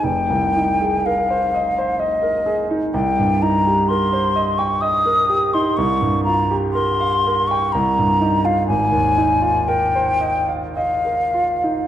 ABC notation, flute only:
X:1
M:3/4
L:1/16
Q:1/4=62
K:Cphr
V:1 name="Flute"
g4 f4 e4 | g2 b2 c'3 d' e'3 c' | d'2 b z c'3 d' b3 f | a4 g4 f4 |]